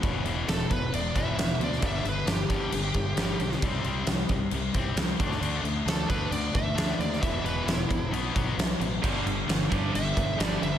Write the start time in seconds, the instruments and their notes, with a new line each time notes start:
0.02 fingered electric bass E1, distorted electric guitar E2 B2 E3, kick, crash
0.24 fingered electric bass E1, distorted electric guitar E2 B2 E3, crash
0.48 fingered electric bass E1, distorted electric guitar E2 B2, lead electric guitar A4, snare, crash
0.70 fingered electric bass E1, distorted electric guitar E2 B2, lead electric guitar B4, kick, crash
0.92 fingered electric bass E1, distorted electric guitar E2 B2, lead electric guitar D5, crash
1.15 fingered electric bass E1, distorted electric guitar E2 B2 E3, lead electric guitar E5, kick, crash
1.37 fingered electric bass E1, distorted electric guitar E2 B2, snare, crash
1.59 fingered electric bass D2, distorted electric guitar E2 B2, crash
1.64 lead electric guitar D5
1.73 snare
1.82 fingered electric bass G1, distorted electric guitar G2 D3 G3, kick, crash
1.86 lead electric guitar E5
2.04 fingered electric bass G1, distorted electric guitar G2 D3, crash
2.09 lead electric guitar B4
2.26 fingered electric bass G1, distorted electric guitar G2 D3, lead electric guitar G4, snare, crash
2.49 fingered electric bass G1, distorted electric guitar G2 D3 G3, kick, crash
2.72 fingered electric bass G1, distorted electric guitar G2 D3, crash
2.94 fingered electric bass G1, distorted electric guitar G2 D3, kick, crash
3.17 fingered electric bass G1, distorted electric guitar G2 D3 G3, snare, crash
3.39 fingered electric bass B1, distorted electric guitar G2 D3, crash
3.52 snare
3.62 fingered electric bass C2, distorted electric guitar C3 G3 C4, kick, crash
3.84 fingered electric bass C2, distorted electric guitar C3 G3 C4, crash
4.07 fingered electric bass C2, distorted electric guitar C3 G3, snare, crash
4.29 fingered electric bass C2, distorted electric guitar C3 G3, kick, crash
4.51 fingered electric bass C2, distorted electric guitar C3 G3, crash
4.74 fingered electric bass C2, distorted electric guitar C3 G3 C4, kick, crash
4.96 fingered electric bass C2, distorted electric guitar C3 G3, snare, crash
5.19 fingered electric bass D2, distorted electric guitar D3 A3 D4, kick, crash
5.32 snare
5.40 fingered electric bass D2, distorted electric guitar D3 A3 D4, crash
5.63 fingered electric bass D2, distorted electric guitar D3 A3, crash
5.86 fingered electric bass D2, distorted electric guitar D3 A3, snare, crash
5.90 lead electric guitar A4
6.06 fingered electric bass D2, distorted electric guitar D3 A3 D4, lead electric guitar B4, kick, crash
6.31 fingered electric bass D2, distorted electric guitar D3 A3, lead electric guitar D5, crash
6.53 fingered electric bass D2, distorted electric guitar D3 A3, lead electric guitar E5, kick, crash
6.74 fingered electric bass D2, distorted electric guitar D3 A3 D4, crash
6.78 snare
6.98 fingered electric bass D#2, distorted electric guitar D3 A3, lead electric guitar D5, crash
7.13 snare
7.20 fingered electric bass E1, distorted electric guitar E2 B2 E3, lead electric guitar E5, kick, crash
7.44 fingered electric bass E1, distorted electric guitar E2 B2 E3, lead electric guitar B4, crash
7.65 fingered electric bass E1, distorted electric guitar E2 B2, lead electric guitar E4, snare, crash
7.89 fingered electric bass E1, distorted electric guitar E2 B2, kick, crash
8.11 fingered electric bass B1, distorted electric guitar B2 F#3 B3, crash
8.34 fingered electric bass B1, distorted electric guitar B2 F#3 B3, kick, crash
8.57 fingered electric bass B1, distorted electric guitar B2 F#3, snare, crash
8.80 fingered electric bass A1, distorted electric guitar B2 F#3, crash
9.03 fingered electric bass G1, distorted electric guitar G2 D3 G3, kick, crash
9.26 fingered electric bass G1, distorted electric guitar G2 D3, crash
9.48 fingered electric bass G1, distorted electric guitar G2 D3, snare, crash
9.70 fingered electric bass G1, distorted electric guitar G2 D3 G3, kick, crash
9.94 fingered electric bass G1, distorted electric guitar G2 D3, lead electric guitar E5, crash
10.16 fingered electric bass G1, distorted electric guitar G2 D3, kick, crash
10.38 fingered electric bass G1, distorted electric guitar G2 D3 G3, snare, crash
10.45 lead electric guitar D5
10.61 fingered electric bass G1, distorted electric guitar G2 D3, overdriven electric guitar G3, lead electric guitar E5, crash